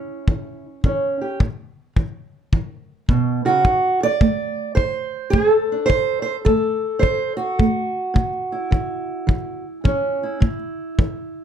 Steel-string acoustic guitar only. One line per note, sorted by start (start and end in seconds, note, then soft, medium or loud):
0.00 0.24 E3 medium
0.00 0.84 C#4 soft
0.00 0.64 E4 medium
0.28 0.81 E3 medium
0.85 1.37 E3 medium
0.85 1.39 C#4 soft
1.21 1.38 G4 soft
1.40 1.93 A2 medium
1.96 2.49 E3 medium
2.53 3.05 E3 medium
3.09 3.45 B2 medium
3.45 3.65 C#3 medium
3.45 4.02 F#4 medium
3.65 4.18 D3 medium
4.03 4.75 D5 loud
4.21 4.74 A3 medium
4.75 5.30 D3 medium
4.75 5.84 C5 medium
5.30 5.86 A3 medium
5.30 5.50 G#4 medium
5.50 6.44 A4 medium
5.72 5.89 D4 soft
5.86 6.43 D3 medium
5.86 6.21 C5 loud
6.22 6.35 C5 medium
6.45 6.99 A3 medium
6.45 7.59 A4 medium
6.99 7.55 D3 medium
6.99 7.36 C5 medium
7.37 9.65 F#4 medium
7.59 8.12 A3 medium
8.14 8.68 A2 medium
8.52 10.23 E4 soft
8.71 9.24 E3 medium
9.27 9.81 E3 medium
9.84 10.37 E3 medium
9.84 10.39 C#4 soft
10.23 11.44 E4 soft
10.40 10.94 A2 medium
10.98 11.44 E3 medium